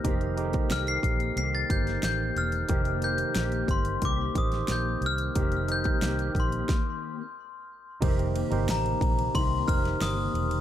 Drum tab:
RD |----------------|----------------|----------------|xxxxxxxxx-xxx-xx|
HH |xxxxxxxxx-xxx-xx|xxxxxxxxx-xxx-xx|xxxxxxxx--------|----------------|
SD |----o------oo---|----o------oo---|----o---o-------|----o------oo---|
BD |o--o--o---o-----|o-----o-o-o-----|o--o--o-o-------|o-----o-o-o-----|